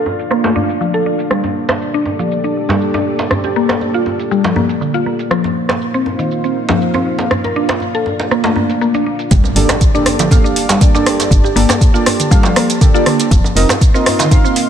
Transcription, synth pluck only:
0.31 0.43 A#3 loud
0.44 0.55 A3 loud
0.56 0.68 D4 loud
0.81 0.88 F3 medium
0.94 1.05 A4 loud
1.06 1.19 D4 medium
1.31 1.43 G3 medium
1.94 2.01 D4 loud
2.19 2.26 F3 medium
2.44 2.55 D4 medium
2.69 2.80 G3 loud
2.94 3.01 D4 loud
3.44 3.55 G4 medium
3.56 3.68 A#3 loud
3.94 4.05 F4 loud
4.31 4.43 G3 loud
4.45 4.55 F3 loud
4.56 4.68 A#3 loud
4.81 4.88 D3 medium
4.94 5.05 F4 loud
5.06 5.19 A#3 medium
5.31 5.43 F3 medium
5.94 6.01 C4 loud
6.19 6.25 D#3 medium
6.44 6.55 C4 medium
6.69 6.80 F3 loud
6.94 7.01 C4 loud
7.45 7.55 A#4 medium
7.56 7.68 D4 loud
7.95 8.05 A4 loud
8.31 8.43 A#3 loud
8.45 8.55 A3 loud
8.56 8.63 A#3 medium
8.81 8.93 A#3 loud
8.95 9.05 D4 loud
9.06 9.13 D4 medium
9.31 9.43 G3 medium
9.95 10.01 D4 loud
10.20 10.26 F3 medium
10.44 10.55 D4 medium
10.70 10.81 G3 loud
10.95 11.01 D4 loud
11.44 11.55 G4 medium
11.56 11.68 A#3 loud
11.94 12.05 F4 loud
12.31 12.43 G3 loud
12.44 12.55 F3 loud
12.56 12.68 A#3 loud
12.81 12.88 D3 medium
12.94 13.05 F4 loud
13.06 13.19 A#3 medium
13.32 13.43 F3 medium
13.94 14.01 C4 loud
14.20 14.26 D#3 medium
14.44 14.55 C4 medium

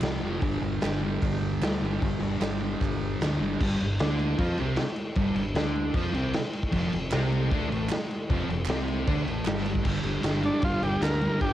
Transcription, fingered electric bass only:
0.02 0.20 C2 medium
0.21 0.40 F1 medium
0.42 0.60 G1 medium
0.62 0.79 G1 medium
0.83 1.17 G1 medium
1.22 1.57 G1 loud
1.61 1.79 D2 medium
1.82 1.99 G1 medium
2.02 2.19 G1 medium
2.20 2.38 G1 medium
2.41 2.75 G1 medium
2.81 3.15 G1 medium
3.21 3.38 D2 medium
3.40 3.57 G1 medium
3.61 3.78 G1 loud
3.80 3.98 G1 medium
4.00 4.36 D2 medium
4.39 4.57 F2 medium
4.59 4.76 C2 loud
5.16 5.34 G1 medium
5.35 5.53 G1 medium
5.55 5.91 D2 medium
5.95 6.12 F2 loud
6.13 6.32 C2 loud
6.73 6.91 F1 loud
6.94 7.11 F1 medium
7.13 7.49 C2 medium
7.51 7.69 D2 loud
7.72 7.89 A1 medium
8.30 8.48 F1 loud
8.48 8.67 F1 medium
8.67 9.04 C2 medium
9.08 9.25 D2 loud
9.27 9.45 A1 loud
9.45 9.82 G1 medium
9.86 9.98 G1 medium
10.04 10.17 G1 medium
10.23 10.49 G1 medium
10.63 10.76 G1 loud
10.82 10.95 G1 medium
11.01 11.27 D2 medium
11.41 11.53 G1 medium

